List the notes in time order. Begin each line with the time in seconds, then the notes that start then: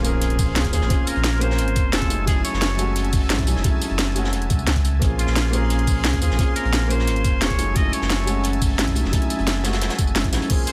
Already playing: A#1 A#3 C4 C#4 F4 G#4 C5 F5 G#5, impact
0.02 A#3 C4 C#4 F4 G#4, closed hi-hat, tambourine
0.07 A#4
0.22 closed hi-hat
0.30 closed hi-hat
0.39 kick, closed hi-hat, open hi-hat, tambourine
0.54 C#2 A#3 C4 C#4 F4 G#4, snare, closed hi-hat
0.65 kick, closed hi-hat
0.72 D#2 A#3 C4 C#4 F4 G#4, closed hi-hat, open hi-hat, tambourine
0.81 A#1, snare
0.88 A#3 C4 C#4 F4, kick, closed hi-hat
0.92 G#4
1.07 A#4, closed hi-hat, tambourine
1.16 A#1, closed hi-hat
1.24 snare, closed hi-hat
1.39 A#3 C4 C#4 F4 C5, closed hi-hat, tambourine
1.44 A#4
1.51 snare
1.58 G#1, closed hi-hat
1.68 closed hi-hat
1.76 F1, kick, closed hi-hat, tambourine
1.92 A#3 C4 C#4 F4 G#4 A4, snare, closed hi-hat
2.02 kick, closed hi-hat
2.09 F#1 F#3 G#3 A3 C#4 D#4 E5 G#5 A5, closed hi-hat, open hi-hat, tambourine
2.25 F#3 G#3 A3 C#4 G#4, kick, closed hi-hat
2.30 E4
2.45 C#5, closed hi-hat, tambourine
2.53 F#1, snare
2.62 snare, closed hi-hat
2.77 F#3 G#3 A3 C#4, closed hi-hat, tambourine
2.81 F#4
2.96 closed hi-hat
3.05 closed hi-hat
3.13 kick, closed hi-hat, open hi-hat, tambourine
3.29 A1 F#3 G#3 A3 C#4 E4, snare, closed hi-hat
3.39 kick, closed hi-hat
3.46 B1 F#3 G#3 A3 C#4 D#4, closed hi-hat, open hi-hat, tambourine
3.56 F#1, snare
3.62 F#3 G#3 A3 C#4, kick, closed hi-hat
3.67 E4
3.82 closed hi-hat, tambourine
3.90 F#1, closed hi-hat
3.98 snare, closed hi-hat
4.14 F#3 G#3 A3 C#4, closed hi-hat, tambourine
4.18 F#4
4.24 snare
4.33 E1, closed hi-hat
4.42 closed hi-hat
4.50 C#2, kick, closed hi-hat, tambourine
4.59 tambourine
4.67 C#2, snare, closed hi-hat
4.76 kick, closed hi-hat
4.85 closed hi-hat, open hi-hat, tambourine
4.99 A#1 A#3 C4 C#4 F4 F5 G#5 C6, kick, closed hi-hat
5.04 G#4
5.19 F4, closed hi-hat, tambourine
5.27 A#1, snare
5.36 snare, closed hi-hat
5.51 A#3 C4 C#4 F4 G#4, closed hi-hat, tambourine
5.55 A#4
5.70 closed hi-hat
5.79 closed hi-hat
5.87 kick, closed hi-hat, open hi-hat, tambourine
6.03 C#2 A#3 C4 C#4 F4 G#4, snare, closed hi-hat
6.13 kick, closed hi-hat
6.21 D#2 A#3 C4 C#4 F4 G#4, closed hi-hat, open hi-hat, tambourine
6.30 A#1, snare
6.36 A#3 C4 C#4 F4, kick, closed hi-hat
6.41 G#4
6.56 A#4, closed hi-hat, tambourine
6.64 A#1, closed hi-hat
6.73 snare, closed hi-hat
6.88 A#3 C4 C#4 F4 C5, closed hi-hat, tambourine
6.92 A#4
6.99 snare
7.07 G#1, closed hi-hat
7.16 closed hi-hat
7.24 F1, kick, closed hi-hat, tambourine
7.41 A#3 C4 C#4 F4 G#4 C#5, snare, closed hi-hat
7.50 kick, closed hi-hat
7.58 F#1 F#3 G#3 A3 C#4 D#4 E5 A5, closed hi-hat, open hi-hat, tambourine
7.74 F#3 G#3 A3 C#4 D#5, kick, closed hi-hat
7.78 E4
7.93 C#5, closed hi-hat, tambourine
8.01 F#1, snare
8.10 snare, closed hi-hat
8.25 F#3 G#3 A3 C#4, closed hi-hat, tambourine
8.30 F#4
8.44 closed hi-hat
8.53 closed hi-hat
8.62 kick, closed hi-hat, open hi-hat, tambourine
8.78 A1 F#3 G#3 A3 C#4 E4, snare, closed hi-hat
8.87 kick, closed hi-hat
8.94 B1 F#3 G#3 A3 C#4 D#4, closed hi-hat, open hi-hat, tambourine
9.05 F#1, snare
9.11 F#3 G#3 A3 C#4, kick, closed hi-hat
9.15 E4
9.22 closed hi-hat
9.30 closed hi-hat, tambourine
9.39 F#1, closed hi-hat
9.47 snare, closed hi-hat
9.62 F#3 G#3 A3 C#4, snare, closed hi-hat, tambourine
9.67 F#4
9.73 snare, closed hi-hat, tambourine
9.82 E1, snare, closed hi-hat
9.90 snare, closed hi-hat
9.99 F#1, kick, closed hi-hat, tambourine
10.07 tambourine
10.15 F#3 G#3 A3 C#4 E4, snare, closed hi-hat
10.24 kick, closed hi-hat
10.32 A1 F#3 G#3 A3 C#4 D#4, snare, closed hi-hat, open hi-hat, tambourine
10.42 closed hi-hat
10.48 A#3 C4 C#4 F4 F5 C6, kick, closed hi-hat, crash
10.53 G#4
10.67 C5, closed hi-hat, tambourine